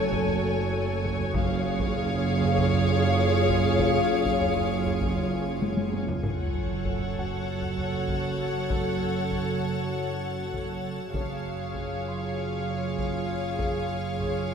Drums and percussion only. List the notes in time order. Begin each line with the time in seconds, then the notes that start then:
0.12 taiko
0.27 taiko low
1.04 taiko
1.20 taiko low
1.35 taiko
1.79 taiko
1.96 taiko low
2.11 taiko low
2.42 taiko low
2.57 taiko
2.72 taiko low
3.49 taiko
3.65 taiko low
3.79 taiko
4.25 taiko
4.41 taiko low
4.56 taiko low
4.86 taiko low
5.01 taiko
5.16 taiko low
5.62 taiko high
5.77 taiko high
5.94 taiko high
6.08 taiko low
6.23 taiko
6.54 taiko low
6.70 taiko low
6.85 taiko
7.00 taiko low
7.16 taiko low
7.62 taiko low
7.77 taiko low
7.93 taiko low
8.08 taiko
8.70 taiko
9.31 taiko
10.54 taiko
11.14 taiko
11.75 taiko
12.98 taiko
13.59 taiko
14.20 taiko